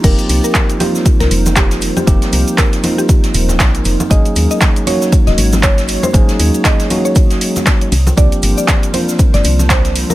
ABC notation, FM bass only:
X:1
M:4/4
L:1/16
Q:"Swing 16ths" 1/4=118
K:Fm
V:1 name="FM bass" clef=bass
F,,, z C,, z6 C,, F,,,4- F,,, z | F,,, z C,, z6 z E,,,2 B,,, z F,,, z | A,,, z E,, z6 E,,, A,,,4- A,,, z | A,,, z E,, z8 z3 C,, z |
C,, z G,,, z6 G,,, C,,4- C,, z |]